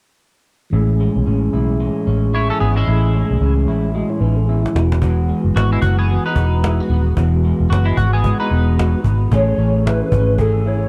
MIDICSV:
0, 0, Header, 1, 7, 480
1, 0, Start_track
1, 0, Tempo, 536193
1, 653, Time_signature, 4, 2, 24, 8
1, 9746, End_track
2, 0, Start_track
2, 0, Title_t, "Soft synth lead"
2, 0, Program_c, 0, 80
2, 8363, Note_on_c, 0, 73, 110
2, 8796, Note_off_c, 0, 73, 0
2, 8842, Note_on_c, 0, 71, 97
2, 9312, Note_on_c, 0, 69, 92
2, 9325, Note_off_c, 0, 71, 0
2, 9551, Note_on_c, 0, 73, 94
2, 9564, Note_off_c, 0, 69, 0
2, 9746, Note_off_c, 0, 73, 0
2, 9746, End_track
3, 0, Start_track
3, 0, Title_t, "Clean electric guitar"
3, 0, Program_c, 1, 27
3, 2100, Note_on_c, 1, 73, 68
3, 2106, Note_on_c, 1, 64, 56
3, 2234, Note_off_c, 1, 73, 0
3, 2237, Note_off_c, 1, 64, 0
3, 2240, Note_on_c, 1, 69, 75
3, 2245, Note_on_c, 1, 61, 58
3, 2327, Note_off_c, 1, 69, 0
3, 2331, Note_on_c, 1, 68, 68
3, 2332, Note_off_c, 1, 61, 0
3, 2338, Note_on_c, 1, 59, 63
3, 2469, Note_off_c, 1, 68, 0
3, 2473, Note_off_c, 1, 59, 0
3, 2473, Note_on_c, 1, 56, 61
3, 2478, Note_on_c, 1, 64, 50
3, 3160, Note_off_c, 1, 64, 0
3, 3161, Note_off_c, 1, 56, 0
3, 4977, Note_on_c, 1, 66, 67
3, 5113, Note_off_c, 1, 66, 0
3, 5124, Note_on_c, 1, 56, 55
3, 5126, Note_on_c, 1, 64, 55
3, 5204, Note_off_c, 1, 64, 0
3, 5207, Note_on_c, 1, 66, 71
3, 5214, Note_off_c, 1, 56, 0
3, 5348, Note_off_c, 1, 66, 0
3, 5359, Note_on_c, 1, 68, 68
3, 5365, Note_on_c, 1, 59, 60
3, 5587, Note_off_c, 1, 68, 0
3, 5590, Note_off_c, 1, 59, 0
3, 5601, Note_on_c, 1, 71, 63
3, 5607, Note_on_c, 1, 63, 54
3, 6284, Note_off_c, 1, 71, 0
3, 6287, Note_off_c, 1, 63, 0
3, 6893, Note_on_c, 1, 66, 66
3, 7029, Note_on_c, 1, 64, 62
3, 7030, Note_off_c, 1, 66, 0
3, 7034, Note_on_c, 1, 56, 55
3, 7125, Note_off_c, 1, 64, 0
3, 7128, Note_off_c, 1, 56, 0
3, 7136, Note_on_c, 1, 66, 73
3, 7272, Note_off_c, 1, 66, 0
3, 7281, Note_on_c, 1, 68, 69
3, 7290, Note_on_c, 1, 59, 60
3, 7508, Note_off_c, 1, 68, 0
3, 7513, Note_off_c, 1, 59, 0
3, 7517, Note_on_c, 1, 71, 65
3, 7522, Note_on_c, 1, 63, 52
3, 8202, Note_off_c, 1, 71, 0
3, 8204, Note_off_c, 1, 63, 0
3, 9746, End_track
4, 0, Start_track
4, 0, Title_t, "Tonewheel organ"
4, 0, Program_c, 2, 16
4, 628, Note_on_c, 2, 52, 61
4, 641, Note_on_c, 2, 56, 56
4, 655, Note_on_c, 2, 61, 56
4, 672, Note_on_c, 2, 68, 69
4, 3493, Note_off_c, 2, 56, 0
4, 3500, Note_off_c, 2, 61, 0
4, 3508, Note_off_c, 2, 68, 0
4, 3528, Note_on_c, 2, 75, 53
4, 3534, Note_on_c, 2, 66, 44
4, 3666, Note_on_c, 2, 73, 59
4, 3668, Note_off_c, 2, 75, 0
4, 3670, Note_on_c, 2, 64, 51
4, 3671, Note_off_c, 2, 66, 0
4, 3763, Note_off_c, 2, 73, 0
4, 3764, Note_on_c, 2, 71, 60
4, 3765, Note_off_c, 2, 64, 0
4, 3770, Note_on_c, 2, 63, 53
4, 3906, Note_off_c, 2, 71, 0
4, 3906, Note_on_c, 2, 69, 62
4, 3909, Note_off_c, 2, 63, 0
4, 3912, Note_on_c, 2, 61, 52
4, 4002, Note_on_c, 2, 68, 51
4, 4003, Note_off_c, 2, 69, 0
4, 4006, Note_off_c, 2, 61, 0
4, 4007, Note_on_c, 2, 59, 51
4, 4142, Note_on_c, 2, 64, 48
4, 4145, Note_off_c, 2, 68, 0
4, 4147, Note_off_c, 2, 59, 0
4, 4147, Note_on_c, 2, 56, 42
4, 4206, Note_off_c, 2, 52, 0
4, 4218, Note_on_c, 2, 52, 64
4, 4222, Note_off_c, 2, 56, 0
4, 4233, Note_on_c, 2, 56, 63
4, 4250, Note_on_c, 2, 59, 59
4, 4263, Note_on_c, 2, 66, 68
4, 4378, Note_off_c, 2, 64, 0
4, 8041, Note_off_c, 2, 52, 0
4, 8048, Note_off_c, 2, 56, 0
4, 8057, Note_off_c, 2, 59, 0
4, 8063, Note_off_c, 2, 66, 0
4, 8311, Note_on_c, 2, 52, 55
4, 8326, Note_on_c, 2, 57, 55
4, 8341, Note_on_c, 2, 61, 53
4, 8356, Note_on_c, 2, 68, 61
4, 9746, Note_off_c, 2, 52, 0
4, 9746, Note_off_c, 2, 57, 0
4, 9746, Note_off_c, 2, 61, 0
4, 9746, Note_off_c, 2, 68, 0
4, 9746, End_track
5, 0, Start_track
5, 0, Title_t, "Clean electric guitar"
5, 0, Program_c, 3, 27
5, 653, Note_on_c, 3, 45, 67
5, 656, Note_on_c, 3, 64, 52
5, 898, Note_on_c, 3, 56, 52
5, 1129, Note_on_c, 3, 61, 50
5, 1367, Note_off_c, 3, 64, 0
5, 1371, Note_on_c, 3, 64, 57
5, 1609, Note_off_c, 3, 56, 0
5, 1613, Note_on_c, 3, 56, 53
5, 1840, Note_off_c, 3, 61, 0
5, 1851, Note_on_c, 3, 61, 50
5, 2090, Note_off_c, 3, 64, 0
5, 2093, Note_on_c, 3, 64, 60
5, 2332, Note_off_c, 3, 61, 0
5, 2337, Note_on_c, 3, 59, 47
5, 2482, Note_off_c, 3, 59, 0
5, 2482, Note_on_c, 3, 61, 45
5, 2567, Note_off_c, 3, 45, 0
5, 2578, Note_on_c, 3, 45, 65
5, 2580, Note_off_c, 3, 64, 0
5, 2584, Note_on_c, 3, 64, 55
5, 2817, Note_off_c, 3, 56, 0
5, 2820, Note_on_c, 3, 56, 53
5, 3045, Note_off_c, 3, 61, 0
5, 3056, Note_on_c, 3, 61, 49
5, 3290, Note_off_c, 3, 64, 0
5, 3294, Note_on_c, 3, 64, 62
5, 3531, Note_off_c, 3, 56, 0
5, 3535, Note_on_c, 3, 56, 60
5, 3765, Note_off_c, 3, 61, 0
5, 3776, Note_on_c, 3, 61, 50
5, 4015, Note_off_c, 3, 64, 0
5, 4018, Note_on_c, 3, 64, 61
5, 4259, Note_on_c, 3, 52, 64
5, 4313, Note_off_c, 3, 61, 0
5, 4314, Note_off_c, 3, 45, 0
5, 4499, Note_off_c, 3, 52, 0
5, 4502, Note_on_c, 3, 52, 71
5, 4503, Note_off_c, 3, 64, 0
5, 4507, Note_on_c, 3, 66, 58
5, 4534, Note_off_c, 3, 56, 0
5, 4737, Note_on_c, 3, 56, 54
5, 4975, Note_on_c, 3, 59, 48
5, 5205, Note_off_c, 3, 66, 0
5, 5215, Note_on_c, 3, 66, 68
5, 5458, Note_off_c, 3, 56, 0
5, 5462, Note_on_c, 3, 56, 54
5, 5693, Note_off_c, 3, 59, 0
5, 5703, Note_on_c, 3, 59, 52
5, 5935, Note_off_c, 3, 66, 0
5, 5943, Note_on_c, 3, 64, 58
5, 6090, Note_off_c, 3, 64, 0
5, 6090, Note_on_c, 3, 66, 47
5, 6173, Note_off_c, 3, 59, 0
5, 6184, Note_on_c, 3, 59, 50
5, 6413, Note_off_c, 3, 52, 0
5, 6413, Note_off_c, 3, 66, 0
5, 6417, Note_on_c, 3, 52, 71
5, 6424, Note_on_c, 3, 66, 57
5, 6662, Note_off_c, 3, 56, 0
5, 6665, Note_on_c, 3, 56, 56
5, 6889, Note_off_c, 3, 59, 0
5, 6900, Note_on_c, 3, 59, 55
5, 7127, Note_off_c, 3, 66, 0
5, 7138, Note_on_c, 3, 66, 66
5, 7375, Note_off_c, 3, 56, 0
5, 7378, Note_on_c, 3, 56, 61
5, 7610, Note_off_c, 3, 59, 0
5, 7621, Note_on_c, 3, 59, 57
5, 7856, Note_off_c, 3, 66, 0
5, 7865, Note_on_c, 3, 66, 63
5, 8093, Note_off_c, 3, 59, 0
5, 8104, Note_on_c, 3, 59, 51
5, 8340, Note_off_c, 3, 56, 0
5, 8344, Note_on_c, 3, 57, 77
5, 8350, Note_on_c, 3, 68, 60
5, 8397, Note_off_c, 3, 59, 0
5, 8398, Note_off_c, 3, 66, 0
5, 8585, Note_on_c, 3, 61, 56
5, 8825, Note_on_c, 3, 64, 53
5, 9050, Note_off_c, 3, 61, 0
5, 9061, Note_on_c, 3, 61, 55
5, 9294, Note_off_c, 3, 68, 0
5, 9298, Note_on_c, 3, 68, 58
5, 9537, Note_off_c, 3, 64, 0
5, 9541, Note_on_c, 3, 64, 53
5, 9550, Note_off_c, 3, 52, 0
5, 9746, Note_off_c, 3, 57, 0
5, 9746, Note_off_c, 3, 61, 0
5, 9746, Note_off_c, 3, 64, 0
5, 9746, Note_off_c, 3, 68, 0
5, 9746, End_track
6, 0, Start_track
6, 0, Title_t, "Fingered electric bass"
6, 0, Program_c, 4, 33
6, 650, Note_on_c, 4, 33, 92
6, 958, Note_off_c, 4, 33, 0
6, 1037, Note_on_c, 4, 35, 65
6, 1114, Note_off_c, 4, 35, 0
6, 1136, Note_on_c, 4, 33, 77
6, 1327, Note_off_c, 4, 33, 0
6, 1376, Note_on_c, 4, 35, 66
6, 1682, Note_off_c, 4, 35, 0
6, 1854, Note_on_c, 4, 33, 84
6, 2238, Note_off_c, 4, 33, 0
6, 2335, Note_on_c, 4, 32, 68
6, 2527, Note_off_c, 4, 32, 0
6, 2574, Note_on_c, 4, 33, 83
6, 2881, Note_off_c, 4, 33, 0
6, 2957, Note_on_c, 4, 35, 71
6, 3034, Note_off_c, 4, 35, 0
6, 3049, Note_on_c, 4, 37, 82
6, 3287, Note_off_c, 4, 37, 0
6, 3287, Note_on_c, 4, 33, 72
6, 3597, Note_off_c, 4, 33, 0
6, 3764, Note_on_c, 4, 33, 84
6, 4152, Note_off_c, 4, 33, 0
6, 4251, Note_on_c, 4, 28, 76
6, 4752, Note_off_c, 4, 28, 0
6, 4873, Note_on_c, 4, 30, 69
6, 4952, Note_off_c, 4, 30, 0
6, 4975, Note_on_c, 4, 32, 72
6, 5167, Note_off_c, 4, 32, 0
6, 5215, Note_on_c, 4, 30, 86
6, 5522, Note_off_c, 4, 30, 0
6, 5693, Note_on_c, 4, 28, 85
6, 6078, Note_off_c, 4, 28, 0
6, 6172, Note_on_c, 4, 27, 83
6, 6365, Note_off_c, 4, 27, 0
6, 6420, Note_on_c, 4, 28, 95
6, 6725, Note_off_c, 4, 28, 0
6, 6803, Note_on_c, 4, 28, 80
6, 6878, Note_off_c, 4, 28, 0
6, 6895, Note_on_c, 4, 30, 79
6, 7087, Note_off_c, 4, 30, 0
6, 7138, Note_on_c, 4, 32, 91
6, 7444, Note_off_c, 4, 32, 0
6, 7616, Note_on_c, 4, 28, 93
6, 8000, Note_off_c, 4, 28, 0
6, 8095, Note_on_c, 4, 32, 69
6, 8287, Note_off_c, 4, 32, 0
6, 8338, Note_on_c, 4, 33, 89
6, 8528, Note_off_c, 4, 33, 0
6, 8574, Note_on_c, 4, 33, 73
6, 8958, Note_off_c, 4, 33, 0
6, 9058, Note_on_c, 4, 32, 80
6, 9746, Note_off_c, 4, 32, 0
6, 9746, End_track
7, 0, Start_track
7, 0, Title_t, "Cajon"
7, 4169, Note_on_c, 9, 38, 57
7, 4258, Note_off_c, 9, 38, 0
7, 4261, Note_on_c, 9, 38, 84
7, 4351, Note_off_c, 9, 38, 0
7, 4404, Note_on_c, 9, 38, 79
7, 4492, Note_on_c, 9, 36, 91
7, 4494, Note_off_c, 9, 38, 0
7, 4581, Note_off_c, 9, 36, 0
7, 4640, Note_on_c, 9, 38, 20
7, 4726, Note_off_c, 9, 38, 0
7, 4726, Note_on_c, 9, 38, 43
7, 4815, Note_off_c, 9, 38, 0
7, 4986, Note_on_c, 9, 38, 97
7, 5075, Note_off_c, 9, 38, 0
7, 5213, Note_on_c, 9, 36, 85
7, 5302, Note_off_c, 9, 36, 0
7, 5458, Note_on_c, 9, 38, 50
7, 5548, Note_off_c, 9, 38, 0
7, 5691, Note_on_c, 9, 36, 78
7, 5780, Note_off_c, 9, 36, 0
7, 5943, Note_on_c, 9, 38, 97
7, 6033, Note_off_c, 9, 38, 0
7, 6181, Note_on_c, 9, 38, 34
7, 6190, Note_off_c, 9, 38, 0
7, 6190, Note_on_c, 9, 38, 28
7, 6280, Note_off_c, 9, 38, 0
7, 6417, Note_on_c, 9, 36, 91
7, 6506, Note_off_c, 9, 36, 0
7, 6567, Note_on_c, 9, 38, 21
7, 6656, Note_off_c, 9, 38, 0
7, 6658, Note_on_c, 9, 38, 41
7, 6747, Note_off_c, 9, 38, 0
7, 6915, Note_on_c, 9, 38, 94
7, 7004, Note_off_c, 9, 38, 0
7, 7138, Note_on_c, 9, 36, 72
7, 7228, Note_off_c, 9, 36, 0
7, 7376, Note_on_c, 9, 36, 73
7, 7389, Note_on_c, 9, 38, 47
7, 7465, Note_off_c, 9, 36, 0
7, 7479, Note_off_c, 9, 38, 0
7, 7623, Note_on_c, 9, 38, 33
7, 7712, Note_off_c, 9, 38, 0
7, 7872, Note_on_c, 9, 38, 101
7, 7961, Note_off_c, 9, 38, 0
7, 8096, Note_on_c, 9, 36, 73
7, 8185, Note_off_c, 9, 36, 0
7, 8339, Note_on_c, 9, 36, 84
7, 8428, Note_off_c, 9, 36, 0
7, 8577, Note_on_c, 9, 38, 45
7, 8667, Note_off_c, 9, 38, 0
7, 8836, Note_on_c, 9, 38, 99
7, 8925, Note_off_c, 9, 38, 0
7, 9058, Note_on_c, 9, 36, 84
7, 9148, Note_off_c, 9, 36, 0
7, 9295, Note_on_c, 9, 36, 69
7, 9306, Note_on_c, 9, 38, 52
7, 9384, Note_off_c, 9, 36, 0
7, 9396, Note_off_c, 9, 38, 0
7, 9541, Note_on_c, 9, 38, 35
7, 9630, Note_off_c, 9, 38, 0
7, 9746, End_track
0, 0, End_of_file